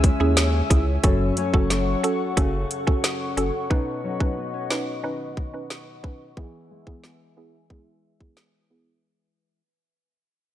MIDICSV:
0, 0, Header, 1, 6, 480
1, 0, Start_track
1, 0, Tempo, 666667
1, 747, Time_signature, 4, 2, 24, 8
1, 7593, End_track
2, 0, Start_track
2, 0, Title_t, "Ambient pad"
2, 0, Program_c, 0, 92
2, 0, Note_on_c, 0, 73, 76
2, 0, Note_on_c, 0, 76, 69
2, 0, Note_on_c, 0, 80, 68
2, 0, Note_on_c, 0, 88, 88
2, 727, Note_off_c, 0, 76, 0
2, 727, Note_off_c, 0, 80, 0
2, 727, Note_off_c, 0, 88, 0
2, 745, Note_on_c, 0, 69, 76
2, 745, Note_on_c, 0, 78, 70
2, 745, Note_on_c, 0, 85, 84
2, 2637, Note_off_c, 0, 73, 0
2, 2646, Note_off_c, 0, 69, 0
2, 2669, Note_on_c, 0, 71, 76
2, 2669, Note_on_c, 0, 75, 67
2, 4557, Note_off_c, 0, 78, 0
2, 4557, Note_off_c, 0, 85, 0
2, 4568, Note_off_c, 0, 75, 0
2, 4586, Note_on_c, 0, 80, 68
2, 4587, Note_on_c, 0, 76, 70
2, 4587, Note_on_c, 0, 88, 78
2, 6479, Note_off_c, 0, 71, 0
2, 6487, Note_off_c, 0, 80, 0
2, 6488, Note_off_c, 0, 76, 0
2, 6488, Note_off_c, 0, 88, 0
2, 7593, End_track
3, 0, Start_track
3, 0, Title_t, "Synth pluck"
3, 0, Program_c, 1, 84
3, 144, Note_on_c, 1, 61, 77
3, 146, Note_on_c, 1, 64, 69
3, 148, Note_on_c, 1, 68, 85
3, 272, Note_off_c, 1, 61, 0
3, 273, Note_off_c, 1, 64, 0
3, 274, Note_off_c, 1, 68, 0
3, 505, Note_on_c, 1, 61, 78
3, 507, Note_on_c, 1, 64, 72
3, 509, Note_on_c, 1, 68, 88
3, 633, Note_off_c, 1, 61, 0
3, 634, Note_off_c, 1, 64, 0
3, 635, Note_off_c, 1, 68, 0
3, 745, Note_on_c, 1, 61, 92
3, 748, Note_on_c, 1, 66, 85
3, 749, Note_on_c, 1, 69, 104
3, 1077, Note_off_c, 1, 61, 0
3, 1078, Note_off_c, 1, 66, 0
3, 1079, Note_off_c, 1, 69, 0
3, 1106, Note_on_c, 1, 61, 80
3, 1108, Note_on_c, 1, 66, 73
3, 1110, Note_on_c, 1, 69, 86
3, 1233, Note_off_c, 1, 61, 0
3, 1234, Note_off_c, 1, 66, 0
3, 1235, Note_off_c, 1, 69, 0
3, 1465, Note_on_c, 1, 61, 79
3, 1467, Note_on_c, 1, 66, 70
3, 1469, Note_on_c, 1, 69, 84
3, 1592, Note_off_c, 1, 61, 0
3, 1594, Note_off_c, 1, 66, 0
3, 1595, Note_off_c, 1, 69, 0
3, 1705, Note_on_c, 1, 61, 95
3, 1707, Note_on_c, 1, 66, 85
3, 1710, Note_on_c, 1, 69, 102
3, 1833, Note_off_c, 1, 61, 0
3, 1834, Note_off_c, 1, 66, 0
3, 1835, Note_off_c, 1, 69, 0
3, 2065, Note_on_c, 1, 61, 80
3, 2067, Note_on_c, 1, 66, 69
3, 2069, Note_on_c, 1, 69, 86
3, 2193, Note_off_c, 1, 61, 0
3, 2194, Note_off_c, 1, 66, 0
3, 2194, Note_off_c, 1, 69, 0
3, 2427, Note_on_c, 1, 61, 76
3, 2429, Note_on_c, 1, 66, 71
3, 2431, Note_on_c, 1, 69, 85
3, 2554, Note_off_c, 1, 61, 0
3, 2555, Note_off_c, 1, 66, 0
3, 2555, Note_off_c, 1, 69, 0
3, 2666, Note_on_c, 1, 61, 92
3, 2668, Note_on_c, 1, 63, 81
3, 2670, Note_on_c, 1, 71, 100
3, 2997, Note_off_c, 1, 61, 0
3, 2999, Note_off_c, 1, 63, 0
3, 2999, Note_off_c, 1, 71, 0
3, 3026, Note_on_c, 1, 61, 77
3, 3027, Note_on_c, 1, 63, 72
3, 3029, Note_on_c, 1, 71, 84
3, 3153, Note_off_c, 1, 61, 0
3, 3154, Note_off_c, 1, 63, 0
3, 3155, Note_off_c, 1, 71, 0
3, 3387, Note_on_c, 1, 61, 77
3, 3389, Note_on_c, 1, 63, 71
3, 3391, Note_on_c, 1, 71, 88
3, 3514, Note_off_c, 1, 61, 0
3, 3515, Note_off_c, 1, 63, 0
3, 3515, Note_off_c, 1, 71, 0
3, 3625, Note_on_c, 1, 61, 92
3, 3628, Note_on_c, 1, 63, 88
3, 3630, Note_on_c, 1, 71, 108
3, 3753, Note_off_c, 1, 61, 0
3, 3754, Note_off_c, 1, 63, 0
3, 3755, Note_off_c, 1, 71, 0
3, 3986, Note_on_c, 1, 61, 77
3, 3988, Note_on_c, 1, 63, 68
3, 3991, Note_on_c, 1, 71, 88
3, 4113, Note_off_c, 1, 61, 0
3, 4114, Note_off_c, 1, 63, 0
3, 4115, Note_off_c, 1, 71, 0
3, 4344, Note_on_c, 1, 61, 78
3, 4346, Note_on_c, 1, 63, 68
3, 4349, Note_on_c, 1, 71, 86
3, 4472, Note_off_c, 1, 61, 0
3, 4473, Note_off_c, 1, 63, 0
3, 4474, Note_off_c, 1, 71, 0
3, 4585, Note_on_c, 1, 59, 92
3, 4587, Note_on_c, 1, 64, 85
3, 4590, Note_on_c, 1, 68, 97
3, 4917, Note_off_c, 1, 59, 0
3, 4918, Note_off_c, 1, 64, 0
3, 4919, Note_off_c, 1, 68, 0
3, 4945, Note_on_c, 1, 59, 78
3, 4947, Note_on_c, 1, 64, 71
3, 4949, Note_on_c, 1, 68, 90
3, 5072, Note_off_c, 1, 59, 0
3, 5073, Note_off_c, 1, 64, 0
3, 5074, Note_off_c, 1, 68, 0
3, 5305, Note_on_c, 1, 59, 75
3, 5307, Note_on_c, 1, 64, 72
3, 5310, Note_on_c, 1, 68, 84
3, 5432, Note_off_c, 1, 59, 0
3, 5433, Note_off_c, 1, 64, 0
3, 5435, Note_off_c, 1, 68, 0
3, 5544, Note_on_c, 1, 59, 93
3, 5546, Note_on_c, 1, 64, 83
3, 5548, Note_on_c, 1, 68, 103
3, 5672, Note_off_c, 1, 59, 0
3, 5673, Note_off_c, 1, 64, 0
3, 5674, Note_off_c, 1, 68, 0
3, 5903, Note_on_c, 1, 59, 76
3, 5907, Note_on_c, 1, 64, 71
3, 5908, Note_on_c, 1, 68, 82
3, 6032, Note_off_c, 1, 59, 0
3, 6033, Note_off_c, 1, 64, 0
3, 6034, Note_off_c, 1, 68, 0
3, 6265, Note_on_c, 1, 59, 77
3, 6268, Note_on_c, 1, 64, 68
3, 6270, Note_on_c, 1, 68, 81
3, 6393, Note_off_c, 1, 59, 0
3, 6394, Note_off_c, 1, 64, 0
3, 6395, Note_off_c, 1, 68, 0
3, 7593, End_track
4, 0, Start_track
4, 0, Title_t, "Nylon-string guitar"
4, 0, Program_c, 2, 24
4, 0, Note_on_c, 2, 49, 84
4, 0, Note_on_c, 2, 56, 67
4, 0, Note_on_c, 2, 61, 60
4, 0, Note_on_c, 2, 64, 68
4, 747, Note_off_c, 2, 49, 0
4, 747, Note_on_c, 2, 42, 82
4, 749, Note_off_c, 2, 64, 0
4, 752, Note_off_c, 2, 61, 0
4, 752, Note_on_c, 2, 61, 71
4, 795, Note_off_c, 2, 56, 0
4, 986, Note_on_c, 2, 54, 65
4, 991, Note_on_c, 2, 57, 65
4, 992, Note_off_c, 2, 61, 0
4, 995, Note_on_c, 2, 61, 72
4, 1218, Note_off_c, 2, 57, 0
4, 1226, Note_on_c, 2, 57, 60
4, 1707, Note_on_c, 2, 49, 69
4, 2664, Note_off_c, 2, 42, 0
4, 2667, Note_on_c, 2, 47, 88
4, 2669, Note_off_c, 2, 61, 0
4, 2672, Note_on_c, 2, 63, 71
4, 2714, Note_off_c, 2, 57, 0
4, 2715, Note_off_c, 2, 49, 0
4, 2904, Note_off_c, 2, 54, 0
4, 2907, Note_off_c, 2, 63, 0
4, 2907, Note_on_c, 2, 54, 61
4, 2911, Note_on_c, 2, 61, 64
4, 2916, Note_on_c, 2, 63, 73
4, 3145, Note_off_c, 2, 61, 0
4, 3148, Note_on_c, 2, 59, 61
4, 3266, Note_off_c, 2, 59, 0
4, 3266, Note_on_c, 2, 61, 54
4, 3626, Note_on_c, 2, 51, 71
4, 4582, Note_off_c, 2, 51, 0
4, 4585, Note_on_c, 2, 52, 80
4, 4587, Note_off_c, 2, 47, 0
4, 4587, Note_off_c, 2, 63, 0
4, 4589, Note_on_c, 2, 64, 70
4, 4634, Note_off_c, 2, 61, 0
4, 4635, Note_off_c, 2, 54, 0
4, 4826, Note_on_c, 2, 56, 63
4, 4831, Note_on_c, 2, 59, 62
4, 4832, Note_off_c, 2, 64, 0
4, 4835, Note_on_c, 2, 64, 69
4, 5063, Note_off_c, 2, 59, 0
4, 5066, Note_on_c, 2, 59, 57
4, 5543, Note_off_c, 2, 56, 0
4, 5546, Note_on_c, 2, 56, 68
4, 6914, Note_off_c, 2, 56, 0
4, 6914, Note_off_c, 2, 59, 0
4, 6918, Note_off_c, 2, 52, 0
4, 6918, Note_off_c, 2, 64, 0
4, 7593, End_track
5, 0, Start_track
5, 0, Title_t, "Sub bass"
5, 0, Program_c, 3, 38
5, 0, Note_on_c, 3, 37, 108
5, 88, Note_off_c, 3, 37, 0
5, 146, Note_on_c, 3, 39, 93
5, 448, Note_off_c, 3, 39, 0
5, 507, Note_on_c, 3, 37, 84
5, 708, Note_off_c, 3, 37, 0
5, 746, Note_on_c, 3, 30, 111
5, 948, Note_off_c, 3, 30, 0
5, 1105, Note_on_c, 3, 30, 88
5, 1408, Note_off_c, 3, 30, 0
5, 1707, Note_on_c, 3, 30, 112
5, 1908, Note_off_c, 3, 30, 0
5, 2427, Note_on_c, 3, 30, 92
5, 2527, Note_off_c, 3, 30, 0
5, 7593, End_track
6, 0, Start_track
6, 0, Title_t, "Drums"
6, 27, Note_on_c, 9, 36, 88
6, 27, Note_on_c, 9, 42, 75
6, 99, Note_off_c, 9, 36, 0
6, 99, Note_off_c, 9, 42, 0
6, 265, Note_on_c, 9, 38, 109
6, 265, Note_on_c, 9, 42, 76
6, 337, Note_off_c, 9, 38, 0
6, 337, Note_off_c, 9, 42, 0
6, 508, Note_on_c, 9, 36, 95
6, 509, Note_on_c, 9, 42, 70
6, 580, Note_off_c, 9, 36, 0
6, 581, Note_off_c, 9, 42, 0
6, 745, Note_on_c, 9, 42, 75
6, 747, Note_on_c, 9, 36, 118
6, 817, Note_off_c, 9, 42, 0
6, 819, Note_off_c, 9, 36, 0
6, 986, Note_on_c, 9, 42, 75
6, 1058, Note_off_c, 9, 42, 0
6, 1106, Note_on_c, 9, 36, 90
6, 1178, Note_off_c, 9, 36, 0
6, 1227, Note_on_c, 9, 38, 68
6, 1228, Note_on_c, 9, 42, 76
6, 1299, Note_off_c, 9, 38, 0
6, 1300, Note_off_c, 9, 42, 0
6, 1469, Note_on_c, 9, 42, 65
6, 1541, Note_off_c, 9, 42, 0
6, 1707, Note_on_c, 9, 36, 98
6, 1708, Note_on_c, 9, 42, 72
6, 1779, Note_off_c, 9, 36, 0
6, 1780, Note_off_c, 9, 42, 0
6, 1949, Note_on_c, 9, 42, 74
6, 2021, Note_off_c, 9, 42, 0
6, 2069, Note_on_c, 9, 36, 98
6, 2141, Note_off_c, 9, 36, 0
6, 2188, Note_on_c, 9, 38, 102
6, 2188, Note_on_c, 9, 42, 78
6, 2260, Note_off_c, 9, 38, 0
6, 2260, Note_off_c, 9, 42, 0
6, 2430, Note_on_c, 9, 42, 69
6, 2502, Note_off_c, 9, 42, 0
6, 2668, Note_on_c, 9, 36, 120
6, 2740, Note_off_c, 9, 36, 0
6, 3027, Note_on_c, 9, 36, 95
6, 3099, Note_off_c, 9, 36, 0
6, 3388, Note_on_c, 9, 38, 106
6, 3460, Note_off_c, 9, 38, 0
6, 3867, Note_on_c, 9, 36, 85
6, 3939, Note_off_c, 9, 36, 0
6, 4107, Note_on_c, 9, 38, 105
6, 4179, Note_off_c, 9, 38, 0
6, 4348, Note_on_c, 9, 36, 97
6, 4420, Note_off_c, 9, 36, 0
6, 4587, Note_on_c, 9, 36, 117
6, 4659, Note_off_c, 9, 36, 0
6, 4945, Note_on_c, 9, 36, 92
6, 5017, Note_off_c, 9, 36, 0
6, 5066, Note_on_c, 9, 38, 64
6, 5138, Note_off_c, 9, 38, 0
6, 5545, Note_on_c, 9, 36, 90
6, 5617, Note_off_c, 9, 36, 0
6, 5908, Note_on_c, 9, 36, 90
6, 5980, Note_off_c, 9, 36, 0
6, 6025, Note_on_c, 9, 38, 99
6, 6097, Note_off_c, 9, 38, 0
6, 7593, End_track
0, 0, End_of_file